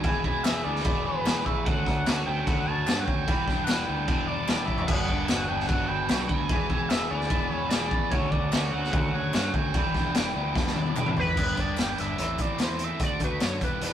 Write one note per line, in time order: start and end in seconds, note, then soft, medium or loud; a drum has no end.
0.00 0.44 E2 medium
0.00 0.45 B2 medium
0.00 0.45 G#5 loud
0.00 crash medium
0.04 0.21 E1 loud
0.04 0.26 E3 loud
0.04 0.25 G#3 loud
0.04 0.24 B3 loud
0.04 0.23 G#4 loud
0.04 kick loud
0.24 0.41 E1 medium
0.24 0.43 E3 medium
0.24 0.44 G#3 medium
0.24 0.45 B3 medium
0.24 0.85 E4 medium
0.24 0.46 G#4 medium
0.24 kick medium
0.43 0.62 E1 loud
0.43 0.67 E3 medium
0.43 0.66 G#3 medium
0.43 0.65 B3 medium
0.43 0.63 G#4 medium
0.43 0.65 E5 loud
0.43 snare loud
0.43 clap loud
0.43 crash medium
0.64 0.82 D2 medium
0.64 0.86 G#3 medium
0.64 0.86 B3 medium
0.64 0.87 G#4 medium
0.64 1.06 D5 loud
0.68 0.85 E3 medium
0.76 snare soft
0.84 1.02 E1 loud
0.84 1.25 E2 medium
0.84 1.26 B2 medium
0.84 1.07 E3 medium
0.84 1.06 G#3 loud
0.84 1.04 B3 medium
0.84 1.66 E4 medium
0.84 1.03 G#4 loud
0.84 kick loud
0.84 crash medium
1.05 1.22 E1 medium
1.05 1.24 E3 medium
1.05 1.25 G#3 medium
1.05 1.26 B3 medium
1.05 1.27 G#4 medium
1.05 1.47 B4 loud
1.05 1.45 B4 medium
1.25 1.42 E1 medium
1.25 1.64 E3 medium
1.25 1.65 G#3 medium
1.25 1.65 B3 medium
1.25 1.66 G#4 medium
1.25 snare loud
1.25 clap loud
1.25 crash medium
1.45 1.63 A1 loud
1.45 1.66 B4 medium
1.45 1.65 E5 loud
1.45 kick medium
1.65 1.83 D2 medium
1.65 2.05 D3 loud
1.65 1.88 A3 medium
1.65 1.86 C#4 loud
1.65 1.84 F#4 loud
1.65 2.22 F#5 loud
1.65 kick loud
1.65 crash medium
1.85 2.03 D2 medium
1.85 2.07 A3 medium
1.85 2.08 C#4 medium
1.85 2.09 F#4 medium
1.85 kick medium
1.85 snare soft
2.06 2.23 D2 medium
2.06 2.45 D3 medium
2.06 2.29 A3 medium
2.06 2.27 C#4 medium
2.06 2.25 F#4 medium
2.06 snare loud
2.06 clap loud
2.06 crash medium
2.26 2.43 D2 medium
2.26 2.47 A3 medium
2.26 2.48 C#4 medium
2.26 2.48 F#4 medium
2.26 2.48 G5 loud
2.46 2.63 D2 loud
2.46 2.85 D3 medium
2.46 2.69 A3 medium
2.46 2.67 C#4 medium
2.46 2.66 F#4 loud
2.46 2.67 F#5 loud
2.46 kick loud
2.46 crash medium
2.66 2.84 D2 medium
2.66 2.88 C#4 medium
2.66 2.89 F#4 medium
2.66 3.06 C#5 medium
2.66 3.01 A5 loud
2.70 2.87 A3 medium
2.87 3.04 G2 loud
2.87 3.26 D3 medium
2.87 3.27 A3 medium
2.87 3.27 C#4 medium
2.87 3.27 F#4 medium
2.87 snare loud
2.87 clap loud
2.87 crash medium
3.00 3.06 F#5 medium
3.04 3.24 D2 medium
3.04 3.27 C#5 medium
3.04 3.65 G5 loud
3.04 kick medium
3.27 3.44 E1 medium
3.27 3.67 E2 medium
3.27 3.68 B2 medium
3.27 3.49 E3 loud
3.27 3.49 G3 loud
3.27 3.48 D4 loud
3.27 3.46 E4 loud
3.27 kick loud
3.27 crash medium
3.47 3.64 E1 medium
3.47 3.66 E3 medium
3.47 3.68 G3 medium
3.47 3.69 D4 medium
3.47 3.69 E4 medium
3.47 kick medium
3.47 snare soft
3.64 3.89 E3 medium
3.64 3.87 F#5 loud
3.64 clap loud
3.68 3.84 E1 medium
3.68 3.89 G3 medium
3.68 3.88 D4 medium
3.68 3.85 E4 medium
3.68 4.47 G4 medium
3.68 snare loud
3.68 crash medium
3.86 4.05 D2 medium
3.86 4.08 G3 medium
3.86 5.49 B3 medium
3.86 4.08 D4 medium
3.86 4.09 E4 medium
3.86 4.28 G5 loud
3.90 4.07 E3 medium
4.07 4.25 E1 loud
4.07 4.48 E2 medium
4.07 4.48 B2 medium
4.07 4.29 E3 medium
4.07 4.28 G3 medium
4.07 4.27 D4 medium
4.07 4.26 E4 medium
4.07 kick loud
4.07 crash medium
4.27 4.45 E1 medium
4.27 4.46 E3 medium
4.27 4.48 G3 medium
4.27 4.49 D4 medium
4.27 4.50 E4 medium
4.27 4.67 D5 loud
4.27 4.67 D5 medium
4.48 4.66 E1 medium
4.48 4.87 E3 medium
4.48 4.87 G3 medium
4.48 4.88 D4 medium
4.48 4.89 E4 medium
4.48 4.89 G4 medium
4.48 snare loud
4.48 clap medium
4.48 crash medium
4.65 4.85 A1 medium
4.65 4.89 D5 medium
4.65 4.87 E5 loud
4.65 kick medium
4.78 floor tom medium
4.87 5.05 G1 medium
4.87 5.27 G3 medium
4.87 5.11 B3 loud
4.87 5.09 D4 loud
4.87 5.07 F#4 loud
4.87 5.50 F#5 loud
4.87 kick loud
4.87 crash loud
4.87 crash medium
5.08 5.25 G1 medium
5.08 5.29 B3 medium
5.08 5.29 D4 medium
5.08 5.30 F#4 medium
5.08 kick medium
5.28 5.46 G1 medium
5.28 5.67 G3 medium
5.28 5.51 B3 medium
5.28 5.49 D4 medium
5.28 5.47 F#4 medium
5.28 snare loud
5.28 clap medium
5.28 crash medium
5.48 5.67 G1 medium
5.48 5.69 B3 medium
5.48 5.70 D4 medium
5.48 5.71 F#4 medium
5.48 5.68 G5 loud
5.60 snare soft
5.67 5.86 G1 loud
5.67 6.08 G3 medium
5.67 5.91 B3 medium
5.67 5.89 F#5 loud
5.67 kick loud
5.67 crash medium
5.71 5.90 D4 medium
5.71 5.88 F#4 medium
5.88 6.06 G1 medium
5.88 6.10 D4 medium
5.88 6.11 F#4 medium
5.88 6.28 B4 medium
5.88 6.27 G5 loud
5.92 6.09 B3 medium
6.09 6.27 B1 loud
6.09 6.49 G3 medium
6.09 6.49 B3 medium
6.09 6.50 D4 medium
6.09 6.50 F#4 medium
6.09 snare loud
6.09 clap medium
6.09 crash medium
6.27 6.46 D2 medium
6.27 6.50 B4 medium
6.27 6.90 G#5 loud
6.27 kick medium
6.49 6.67 E1 medium
6.49 6.90 E2 medium
6.49 6.90 B2 medium
6.49 6.72 E3 medium
6.49 6.71 G#3 loud
6.49 6.69 B3 loud
6.49 6.68 G#4 loud
6.49 kick loud
6.49 crash medium
6.70 6.87 E1 medium
6.70 6.88 E3 medium
6.70 6.90 G#3 medium
6.70 6.91 B3 medium
6.70 7.30 E4 medium
6.70 6.92 G#4 medium
6.70 kick medium
6.89 7.07 E1 medium
6.89 7.12 E3 medium
6.89 7.11 G#3 medium
6.89 7.09 B3 medium
6.89 7.10 E5 loud
6.89 snare loud
6.89 clap medium
6.89 crash medium
6.93 7.08 G#4 medium
7.09 7.28 D2 medium
7.09 7.30 E3 medium
7.09 7.31 G#3 medium
7.09 7.31 B3 medium
7.09 7.32 G#4 medium
7.09 7.52 D5 loud
7.21 snare soft
7.30 7.48 E1 loud
7.30 7.71 E2 medium
7.30 7.71 B2 medium
7.30 7.52 E3 medium
7.30 7.52 G#3 loud
7.30 7.50 B3 loud
7.30 8.12 E4 medium
7.30 7.49 G#4 loud
7.30 kick loud
7.30 crash medium
7.50 7.68 E1 medium
7.50 7.69 E3 medium
7.50 7.70 G#3 medium
7.50 7.71 B3 medium
7.50 7.72 G#4 medium
7.50 7.91 B4 medium
7.50 7.68 C#5 loud
7.69 7.88 E1 medium
7.69 8.10 E3 medium
7.69 8.11 G#3 medium
7.69 8.11 B3 medium
7.69 8.12 D5 medium
7.69 snare loud
7.69 clap medium
7.69 crash medium
7.73 8.12 G#4 medium
7.91 8.08 A1 medium
7.91 8.12 B4 medium
7.91 kick medium
8.10 8.29 D2 loud
8.10 8.50 D3 loud
8.10 8.33 A3 medium
8.10 8.31 C#4 loud
8.10 8.30 F#4 loud
8.10 8.32 C#5 loud
8.10 kick loud
8.10 crash medium
8.30 8.49 D2 medium
8.30 8.51 A3 medium
8.30 8.52 C#4 medium
8.30 8.53 F#4 medium
8.30 8.71 D5 medium
8.30 kick medium
8.51 8.70 D2 medium
8.51 8.91 D3 medium
8.51 8.74 A3 medium
8.51 8.73 C#4 medium
8.51 8.71 F#4 medium
8.51 snare loud
8.51 clap medium
8.51 crash medium
8.71 8.89 D2 medium
8.71 8.93 C#4 medium
8.71 8.94 F#4 medium
8.71 9.55 F#5 loud
8.75 8.92 A3 medium
8.84 snare soft
8.92 9.10 D2 loud
8.92 9.31 D3 medium
8.92 9.15 A3 medium
8.92 9.14 C#4 medium
8.92 9.12 F#4 medium
8.92 kick loud
8.92 crash medium
9.13 9.30 D2 medium
9.13 9.32 A3 medium
9.13 9.33 C#4 medium
9.13 9.34 F#4 medium
9.13 9.53 C#5 medium
9.32 9.51 G2 medium
9.32 9.72 D3 medium
9.32 9.73 A3 medium
9.32 9.74 C#4 medium
9.32 9.74 F#4 medium
9.32 snare loud
9.32 clap loud
9.32 crash medium
9.53 9.71 D2 medium
9.53 9.74 C#5 medium
9.53 10.75 G5 medium
9.53 kick medium
9.73 9.91 E1 medium
9.73 10.14 E2 medium
9.73 10.14 B2 loud
9.73 9.95 E3 medium
9.73 9.94 G3 loud
9.73 9.93 D4 loud
9.73 9.92 E4 loud
9.73 kick loud
9.73 crash medium
9.93 10.11 E1 medium
9.93 10.12 E3 medium
9.93 10.13 G3 medium
9.93 10.15 D4 medium
9.93 10.15 E4 medium
9.93 kick medium
9.93 snare soft
10.13 10.33 E1 medium
10.13 10.36 E3 medium
10.13 10.35 G3 medium
10.13 10.34 D4 medium
10.13 10.32 E4 medium
10.13 10.96 G4 medium
10.13 snare loud
10.13 clap medium
10.13 crash medium
10.34 10.52 D2 medium
10.34 10.54 E3 medium
10.34 10.55 G3 medium
10.34 11.37 B3 medium
10.34 10.55 D4 medium
10.34 10.56 E4 medium
10.54 10.72 E1 loud
10.54 10.95 E2 medium
10.54 10.96 B2 medium
10.54 10.77 E3 medium
10.54 10.76 G3 medium
10.54 10.75 D4 medium
10.54 10.74 E4 medium
10.54 kick loud
10.54 snare medium
10.67 snare medium
10.75 10.93 E1 medium
10.75 10.94 E3 medium
10.75 10.95 G3 medium
10.75 10.96 D4 medium
10.75 10.97 E4 medium
10.75 11.16 D5 medium
10.75 high tom medium
10.86 high tom medium
10.95 11.13 E1 medium
10.95 11.35 E3 medium
10.95 11.36 G3 medium
10.95 11.36 D4 medium
10.95 11.37 E4 medium
10.95 11.37 G4 medium
10.95 clap loud
10.95 mid tom medium
11.06 mid tom medium
11.17 11.34 A1 medium
11.17 11.61 B4 loud
11.17 11.37 D5 medium
11.17 floor tom loud
11.27 floor tom medium
11.36 11.69 G1 medium
11.36 11.55 G2 medium
11.36 11.56 D3 medium
11.36 11.56 G3 medium
11.36 11.57 B3 medium
11.36 11.57 D4 medium
11.36 11.58 G4 medium
11.36 kick loud
11.36 crash loud
11.56 11.75 G2 medium
11.56 11.76 D3 medium
11.56 11.76 G3 medium
11.56 11.77 B3 medium
11.56 11.77 D4 medium
11.56 11.78 G4 medium
11.56 11.82 D5 medium
11.56 kick medium
11.56 closed hi-hat medium
11.76 11.94 G1 medium
11.76 11.96 G2 medium
11.76 11.97 D3 medium
11.76 11.97 G3 medium
11.76 11.97 B3 medium
11.76 11.98 D4 medium
11.76 11.98 G4 medium
11.76 snare loud
11.76 clap medium
11.76 closed hi-hat medium
11.81 12.01 G5 loud
11.97 12.15 G1 medium
11.97 12.17 G2 medium
11.97 12.17 D3 medium
11.97 12.17 G3 medium
11.97 12.17 B3 medium
11.97 12.18 D4 medium
11.97 12.18 G4 medium
11.97 12.42 E5 loud
11.97 snare soft
11.97 closed hi-hat medium
12.17 12.35 A1 loud
12.17 12.37 A2 medium
12.17 12.38 E3 medium
12.17 12.38 A3 medium
12.17 12.39 C4 medium
12.17 12.39 E4 medium
12.17 closed hi-hat medium
12.38 12.55 A1 medium
12.38 12.57 A2 medium
12.38 12.58 E3 medium
12.38 12.59 A3 medium
12.38 12.59 C4 medium
12.38 12.59 E4 medium
12.38 12.64 D5 loud
12.38 kick medium
12.38 closed hi-hat medium
12.59 12.92 E2 medium
12.59 12.78 A2 medium
12.59 12.79 E3 medium
12.59 12.79 A3 medium
12.59 12.80 C4 medium
12.59 12.80 E4 medium
12.59 snare loud
12.59 clap medium
12.59 closed hi-hat medium
12.63 12.85 C5 medium
12.79 12.99 A2 medium
12.79 12.99 E3 medium
12.79 12.99 A3 medium
12.79 13.00 C4 medium
12.79 13.00 E4 medium
12.79 closed hi-hat medium
12.84 13.02 E5 medium
13.00 13.16 D2 medium
13.00 13.19 D3 medium
13.00 13.20 A3 loud
13.00 13.20 D4 loud
13.00 13.21 F#4 loud
13.00 13.21 D5 loud
13.00 kick loud
13.00 closed hi-hat medium
13.20 13.37 D2 medium
13.20 13.39 D3 medium
13.20 13.40 A3 medium
13.20 13.40 D4 medium
13.20 13.41 F#4 medium
13.20 kick medium
13.20 closed hi-hat medium
13.24 13.41 B4 medium
13.40 13.58 F#2 medium
13.40 13.60 D3 medium
13.40 13.60 A3 medium
13.40 13.60 D4 medium
13.40 13.61 F#4 medium
13.40 13.65 C#5 medium
13.40 snare loud
13.40 clap medium
13.40 closed hi-hat medium
13.61 13.78 E1 medium
13.61 13.80 E2 medium
13.61 13.80 B2 medium
13.61 13.81 E3 medium
13.61 13.81 G3 medium
13.61 13.82 B3 medium
13.61 13.82 E4 loud
13.61 13.82 G4 medium
13.61 13.83 B4 medium
13.61 kick medium
13.61 closed hi-hat medium
13.81 13.93 E1 medium
13.81 13.93 E2 medium
13.81 13.93 B2 medium
13.81 13.93 E3 medium
13.81 13.93 G3 medium
13.81 13.93 B3 medium
13.81 13.93 E4 loud
13.81 13.93 G4 loud
13.81 13.93 B4 loud
13.81 closed hi-hat medium